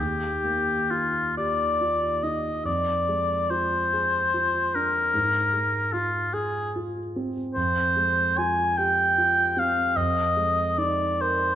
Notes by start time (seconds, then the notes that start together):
Already playing: D#2 G4
0.44 A#3
0.90 F4
1.37 G4 D5
1.81 F4
2.23 D#4 D#5
2.65 F2 D5
3.08 G#3
3.50 F4 C5
3.93 G#4
4.34 F4
4.74 D4 A#4
5.14 G#2
5.53 G#3
5.93 F4
6.33 G#4
6.76 F4
7.16 C4
7.54 F2 C5
7.96 G#3
8.38 F4 G#5
8.77 G4 G5
9.18 F4
9.57 C4 F5
9.96 F2 D#5
10.37 G#3
10.78 D#4 D5
11.21 A#4 C5